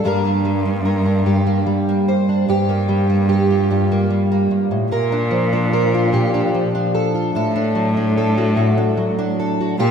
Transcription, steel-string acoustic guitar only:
0.04 1.26 G2 medium
0.04 0.44 G3 soft
0.04 0.25 A#3 soft
0.04 1.05 D4 soft
0.04 0.85 A#4 medium
0.25 0.65 A#3 soft
0.45 1.65 G3 medium
0.66 1.46 A#3 soft
0.85 1.26 A#4 soft
1.06 2.28 D4 soft
1.26 2.47 G2 medium
1.26 2.08 G4 soft
1.47 1.88 A#3 soft
1.66 2.44 G3 soft
1.89 2.69 A#3 soft
2.08 2.44 C5 soft
2.29 2.49 D4 soft
2.49 3.69 G2 medium
2.49 3.28 G4 medium
2.69 3.09 A#3 soft
2.89 4.09 G3 medium
3.10 3.91 A#3 soft
3.29 3.70 G4 medium
3.50 4.87 F4 soft
3.71 4.50 G2 medium
3.71 4.92 G4 soft
3.92 4.30 A#3 soft
4.10 4.87 G3 medium
4.32 5.12 A#3 soft
4.51 4.71 G2 medium
4.71 4.91 A2 soft
4.91 6.11 A#2 medium
4.91 5.72 A#4 medium
5.12 5.52 D4 soft
5.31 6.53 F3 medium
5.53 6.34 D4 soft
5.73 6.13 A#4 medium
5.94 7.13 F4 soft
6.13 7.30 A#2 medium
6.13 6.94 G4 medium
6.34 6.74 D4 soft
6.54 7.35 F3 medium
6.75 7.55 D4 soft
6.95 7.30 A4 soft
7.15 7.30 F4 soft
7.35 8.55 A2 medium
7.35 8.17 A4 medium
7.56 7.96 D4 soft
7.75 8.96 F#3 medium
7.97 8.76 D4 soft
8.18 8.56 A4 medium
8.38 9.59 F#4 soft
8.56 9.74 A2 medium
8.56 9.38 A4 soft
8.78 9.17 D4 soft
8.97 9.75 F#3 soft
9.19 9.75 D4 soft
9.40 9.75 A4 soft
9.61 9.75 F#4 soft
9.79 9.91 A#2 medium
9.79 9.91 G4 medium

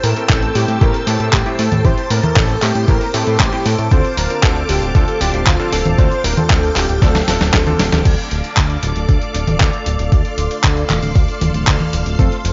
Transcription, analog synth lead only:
0.04 0.29 A#4 loud
0.30 0.57 A4 medium
0.56 0.83 G4 medium
0.82 1.07 A#4 loud
1.07 1.35 A4 medium
1.33 1.61 G4 medium
1.59 1.87 A4 loud
1.85 2.12 C5 loud
2.11 2.38 A#4 loud
2.37 2.64 A4 loud
2.63 2.88 G4 medium
2.88 3.16 A#4 loud
3.14 3.39 A4 medium
3.40 3.67 G4 medium
3.66 3.93 A4 loud
3.91 4.19 C5 loud
4.17 4.44 A#4 medium
4.43 4.71 A4 medium
4.69 4.96 G4 medium
4.95 5.22 A4 loud
5.21 5.48 G4 medium
5.47 5.74 F4 medium
5.72 5.97 A4 medium
5.98 6.26 C5 loud
6.24 6.39 A#4 medium
6.37 6.77 A4 medium
6.76 7.03 G4 medium
7.02 7.79 A4 loud

